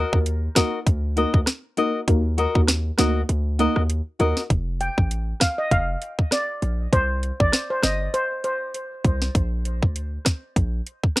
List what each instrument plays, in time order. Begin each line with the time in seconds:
Already playing: nylon-string guitar F#4 A#4 D#5
0.12 808-style bass D#2, synth stab A#3 D#4 F#4 A#4, kick
0.26 closed hi-hat
0.55 synth stab A#3 D#4 F#4 A#4, nylon-string guitar F#4 A#4 D#5, kick, cross-stick, snare, closed hi-hat
0.87 808-style bass D2, kick, closed hi-hat
1.17 synth stab A#3 D#4 F#4 A#4, nylon-string guitar F#4 A#4 D#5, closed hi-hat
1.34 808-style bass D2, kick
1.46 cross-stick, snare, closed hi-hat
1.77 synth stab A#3 D#4 F#4 A#4, nylon-string guitar F#4 A#4 D#5, closed hi-hat
2.08 808-style bass D#2, synth stab A#3 D#4 F#4 A#4, kick, closed hi-hat
2.38 nylon-string guitar F#4 A#4 D#5, closed hi-hat
2.55 808-style bass D#2, synth stab A#3 D#4 F#4 A#4, kick
2.68 cross-stick, snare, closed hi-hat
2.98 808-style bass D2, synth stab A#3 D#4 F#4 A#4, nylon-string guitar F#4 A#4 D#5, cross-stick, snare, closed hi-hat
3.29 808-style bass D2, closed hi-hat
3.59 synth stab A#3 D#4 F#4 A#4, nylon-string guitar F#4 A#4 D#5, closed hi-hat
3.76 808-style bass D#2, cross-stick
3.90 closed hi-hat
4.19 808-style bass D#2, synth stab A#3 D#4 F#4 A#4, nylon-string guitar F#4 A#4 D#5, closed hi-hat
4.37 snare
4.50 808-style bass F1, kick, closed hi-hat
4.81 steel pan G5, closed hi-hat
4.98 808-style bass A1, kick
5.11 closed hi-hat
5.40 steel pan F5, kick, cross-stick, snare, closed hi-hat
5.58 steel pan D#5
5.71 808-style bass F1, steel pan F5, kick, closed hi-hat
6.02 closed hi-hat
6.19 kick
6.31 steel pan D5, cross-stick, snare, closed hi-hat
6.62 808-style bass A#1, closed hi-hat
6.93 808-style bass C2, steel pan C5, kick, closed hi-hat
7.23 closed hi-hat
7.40 808-style bass A1, steel pan D5, kick
7.52 cross-stick, snare, closed hi-hat
7.70 steel pan C5
7.83 808-style bass G1, steel pan D#5, cross-stick, snare, closed hi-hat
8.14 steel pan C5, closed hi-hat
8.44 steel pan C5, closed hi-hat
8.74 closed hi-hat
9.05 808-style bass C2, kick, closed hi-hat
9.22 snare
9.35 808-style bass A#1, kick, closed hi-hat
9.65 closed hi-hat
9.83 808-style bass D2, kick
9.96 closed hi-hat
10.25 kick, cross-stick, snare, closed hi-hat
10.56 808-style bass A#1, kick, closed hi-hat
10.87 closed hi-hat
11.04 kick
11.16 cross-stick, snare, closed hi-hat